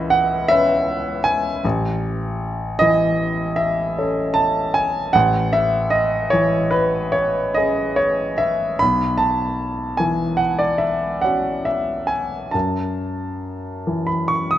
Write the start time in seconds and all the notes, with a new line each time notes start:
Already playing: C#2 E3 D#5 E5 F#5
0.10 F#5
0.48 C#4 B4 E5
1.24 G#5
1.65 A1
2.79 E3 D#5
3.56 E5
3.98 C#4 A4
4.34 A5
4.74 G#5
5.13 A1 F#5
5.53 E5
5.90 D#5
6.30 E3 C#5
6.71 B4
7.12 C#5
7.54 C#4 G#4 D#5
7.96 C#5
8.38 E5
8.79 B1 B5
9.18 A5
9.97 E3 G#5
10.37 F#5
10.59 D5
10.78 E5
11.21 C#4 F#4 F#5
11.65 E5
12.07 G#5
12.51 F#2 A5
13.87 E3
14.07 B5
14.28 C#6
14.51 D#6